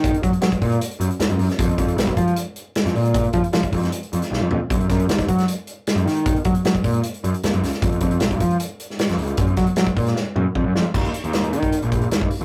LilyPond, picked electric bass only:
\new Staff \with { instrumentName = "Picked electric bass" } { \clef bass \time 4/4 \key fis \major \tempo 4 = 154 dis8 fis16 r16 fis16 r16 ais,8 r8 fis,16 r16 dis,16 fis,16 fis,16 r16 | eis,8 eis,8 b,,8 eis8 r4 r16 eis,16 ais,8~ | ais,8 eis16 r16 eis16 r16 eis,8 r8 eis,16 r16 b,,16 eis,16 eis,16 r16 | fis,8 fis,8 dis,8 fis8 r4 r16 fis,16 dis8~ |
dis8 fis16 r16 fis16 r16 ais,8 r8 fis,16 r16 dis,16 fis,16 cis,16 r16 | eis,8 eis,8 b,,8 eis8 r4 r16 eis,16 cis,8 | fis,8 fis16 r16 fis16 r16 ais,8 r8 fis,16 r16 eis,16 fis,16 eis,16 r16 | dis,8 r16 dis,8. dis8. ais,,8. dis,8 r16 dis,16 | }